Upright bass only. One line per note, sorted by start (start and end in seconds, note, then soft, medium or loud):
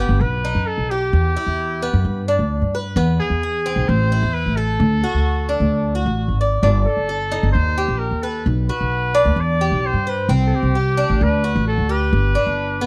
0.09 0.20 G1 medium
0.20 0.54 B1 loud
0.55 0.77 F#2 medium
0.78 1.11 B1 medium
1.13 1.35 E2 loud
1.47 1.91 E2 medium
1.93 2.04 F#2 loud
2.05 2.38 G2 loud
2.39 2.61 D2 medium
2.62 2.95 G2 medium
2.96 3.18 E2 loud
3.30 3.74 E2 medium
3.76 3.87 B1 medium
3.89 4.21 A1 loud
4.23 4.45 E2 medium
4.46 4.79 A1 medium
4.80 5.02 D2 loud
5.14 5.58 D2 medium
5.60 6.04 D2 medium
6.06 6.28 A1 medium
6.28 6.61 G#1 medium
6.63 6.85 G1 loud
6.97 7.41 G1 medium
7.43 7.54 G1 medium
7.55 7.88 D#2 loud
7.88 8.11 A#1 medium
8.11 8.44 D#2 medium
8.46 8.68 B1 loud
8.81 9.24 B1 medium
9.25 9.36 D2 loud
9.36 9.70 E2 loud
9.72 9.93 B1 medium
9.93 10.27 G2 medium
10.29 10.51 C2 loud
10.63 11.07 C2 medium
11.10 11.20 A1 medium
11.21 11.54 D2 loud
11.55 11.77 A1 medium
11.78 12.11 D2 medium
12.13 12.34 G1 loud
12.46 12.86 G1 medium